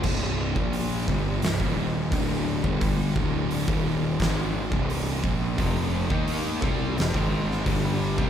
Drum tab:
CC |x---------------|----------------|----------------|
HH |----o---o---o---|o---o---o---o---|o---o---o---o---|
SD |--------o-------|--------o-------|--------o--o----|
BD |o--o--o--o--o--o|o-o--o--o--o--o-|o--o--o--o--o--o|